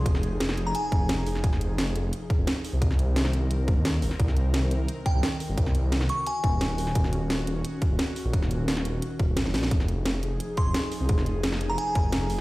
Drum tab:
HH |x-x-x-x-x-x-x-o-|x-x-x-x-x-x-x-o-|x-x-x-x-x-x-x-o-|x-x-x-x-x-x-x-o-|
SD |-o--oo------o--o|-o--o-------o---|-o--oo------o--o|-o--o-------o---|
BD |o---------o-----|o---------o-----|o---------o-----|o---------o-----|

HH |x-x-x-x-x-x-x-o-|x-x-x-x-x-x-x-o-|x-x-x-x-x-x-x-o-|x-x-x-x-x-x-x-o-|
SD |-o--oo------o--o|-o--o-------o---|-o--oo------oooo|-o--o-------o---|
BD |o---------o-----|o---------o-----|o---------o-----|o---------o-----|

HH |x-x-x-x-x-x-x-o-|
SD |-o--oo------o---|
BD |o---------o-----|